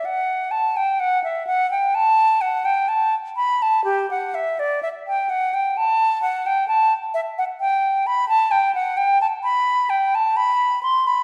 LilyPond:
\new Staff \with { instrumentName = "Flute" } { \time 4/4 \key g \major \tempo 4 = 64 fis''8 a''16 g''16 fis''16 e''16 fis''16 g''16 a''8 fis''16 g''16 a''8 b''16 a''16 | g'16 fis''16 e''16 d''16 e''16 g''16 fis''16 g''16 a''8 fis''16 g''16 a''8 e''16 fis''16 | g''8 b''16 a''16 g''16 fis''16 g''16 a''16 b''8 g''16 a''16 b''8 c'''16 b''16 | }